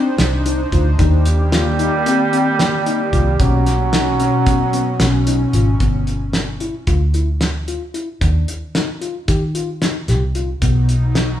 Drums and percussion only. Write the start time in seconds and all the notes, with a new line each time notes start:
0.18 snare, closed hi-hat
0.46 closed hi-hat
0.72 kick, closed hi-hat
0.99 kick, closed hi-hat
1.26 closed hi-hat
1.52 snare, closed hi-hat
1.79 closed hi-hat
2.06 closed hi-hat
2.33 closed hi-hat
2.59 snare, closed hi-hat
2.86 closed hi-hat
3.13 kick, closed hi-hat
3.40 kick, closed hi-hat
3.66 snare, closed hi-hat
3.93 snare, closed hi-hat
4.20 closed hi-hat
4.46 kick, closed hi-hat
4.73 closed hi-hat
5.00 snare, closed hi-hat
5.27 closed hi-hat
5.53 closed hi-hat
5.80 kick, closed hi-hat
6.07 closed hi-hat
6.33 snare, closed hi-hat
6.60 closed hi-hat
6.87 kick, closed hi-hat
7.14 closed hi-hat
7.41 snare, closed hi-hat
7.68 closed hi-hat
7.94 closed hi-hat
8.21 kick, closed hi-hat
8.48 closed hi-hat
8.75 snare, closed hi-hat
9.02 closed hi-hat
9.28 kick, closed hi-hat
9.55 closed hi-hat
9.82 snare, closed hi-hat
10.08 snare, closed hi-hat
10.35 closed hi-hat
10.62 kick, closed hi-hat
10.89 closed hi-hat
11.15 snare, closed hi-hat